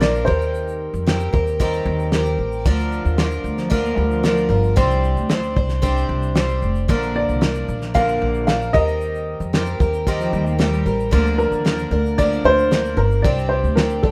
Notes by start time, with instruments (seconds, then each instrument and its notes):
Already playing: upright bass A#1
0.01 twelve-string acoustic guitar F3 A#3 D4 A#4, upright piano D5, snare, shaker
0.15 shaker
0.25 upright bass D#2, twelve-string acoustic guitar D#3 G3 C4 G4 A#4, upright piano C5, kick
0.41 shaker
0.54 shaker
0.68 shaker
0.94 upright bass F2, shaker
1.06 twelve-string acoustic guitar G3 C4 G4 A#4, snare, shaker
1.20 shaker
1.33 upright bass D#2, twelve-string acoustic guitar C4 G4 A#4, kick
1.47 shaker
1.60 twelve-string acoustic guitar D#3 G3 C4 G4 A#4, kick, shaker
1.73 shaker
1.86 upright bass D#2
1.99 shaker
2.12 twelve-string acoustic guitar G3 C4 G4 A#4, snare, shaker
2.25 shaker
2.39 upright bass A1
2.52 shaker
2.65 upright bass D2, twelve-string acoustic guitar D3 F3 D4 F4 A#4, kick, shaker
2.79 shaker
2.92 shaker
3.05 upright bass D#2, shaker
3.18 twelve-string acoustic guitar F3 D4 F4 A#4, snare, shaker
3.31 shaker
3.44 upright bass D2, shaker
3.57 cello F3, snare, shaker
3.70 twelve-string acoustic guitar D3 F3 D4 F4 A#4, cello A3, kick, shaker
3.83 cello A#3, shaker
3.97 upright bass D2, cello G3
4.10 cello F3, shaker
4.23 twelve-string acoustic guitar F3 D4 F4 A#4, snare, shaker
4.37 shaker
4.49 upright bass G1, twelve-string acoustic guitar D4 F4 A#4
4.64 shaker
4.76 upright bass C2, twelve-string acoustic guitar C3 G3 C4 D4 C5, kick, shaker
4.91 shaker
5.04 shaker
5.17 upright bass D2, shaker
5.29 twelve-string acoustic guitar G3 C4 D4 C5, snare, shaker
5.43 shaker
5.56 upright bass C2, twelve-string acoustic guitar C4 D4 C5, kick
5.69 snare, shaker
5.82 twelve-string acoustic guitar C3 G3 C4 D4 C5, kick, shaker
5.97 shaker
6.09 upright bass C2
6.22 shaker
6.35 twelve-string acoustic guitar G3 C4 D4 C5, snare, shaker
6.49 shaker
6.62 upright bass F1, shaker
6.75 shaker
6.88 upright bass A#1, twelve-string acoustic guitar A#2 D3 F3 A#3 D4 A#4, kick, shaker
7.03 shaker
7.16 upright piano D5
7.29 upright bass C2, shaker
7.41 twelve-string acoustic guitar F3 A#3 D4 A#4, snare, shaker
7.55 shaker
7.69 upright bass A#1, shaker
7.81 snare, shaker
7.94 twelve-string acoustic guitar A#2 D3 F3 A#3 D4 A#4, upright piano F5, kick, shaker
8.08 shaker
8.22 upright bass A#1
8.34 shaker
8.47 twelve-string acoustic guitar F3 A#3 D4 A#4, upright piano F5, snare, shaker
8.62 shaker
8.73 upright bass D#2, twelve-string acoustic guitar D#3 G3 C4 G4 A#4, upright piano D#5, kick
8.88 shaker
9.01 shaker
9.15 shaker
9.40 upright bass F2, shaker
9.53 twelve-string acoustic guitar G3 C4 G4 A#4, snare, shaker
9.66 shaker
9.80 upright bass D#2, twelve-string acoustic guitar C4 G4 A#4, kick, shaker
9.94 shaker
10.07 twelve-string acoustic guitar D#3 G3 C4 G4 A#4, kick, shaker
10.19 cello F3, shaker
10.32 upright bass D#2, cello G3, shaker
10.46 cello A#3, shaker
10.58 twelve-string acoustic guitar G3 C4 G4 A#4, cello A3, snare, shaker
10.72 cello G3, shaker
10.86 upright bass A1, twelve-string acoustic guitar C4 G4 A#4, shaker
11.00 shaker
11.11 upright bass D2, twelve-string acoustic guitar D3 F3 A#3 D4 A#4, kick, shaker
11.26 shaker
11.38 upright piano A#4, shaker
11.52 upright bass D#2, shaker
11.65 twelve-string acoustic guitar F3 A#3 D4 A#4, snare, shaker
11.79 shaker
11.91 upright bass D2, twelve-string acoustic guitar A#3 D4 A#4
12.06 shaker
12.18 twelve-string acoustic guitar D3 F3 A#3 D4 A#4, upright piano D5, kick, shaker
12.32 shaker
12.44 upright bass D2, upright piano C5
12.59 shaker
12.71 twelve-string acoustic guitar F3 A#3 D4 A#4, snare, shaker
12.85 shaker
12.97 upright bass G1, twelve-string acoustic guitar A#3 D4 A#4, upright piano A#4
13.11 shaker
13.22 upright bass C2, twelve-string acoustic guitar C3 G3 C4 D4 G4, upright piano D5, kick, shaker
13.39 shaker
13.49 upright piano C5
13.64 upright bass D2, shaker
13.76 twelve-string acoustic guitar G3 C4 D4 G4, upright piano A#4, snare, shaker
13.90 shaker
14.03 upright bass C2, twelve-string acoustic guitar C4 D4 G4, upright piano A4, kick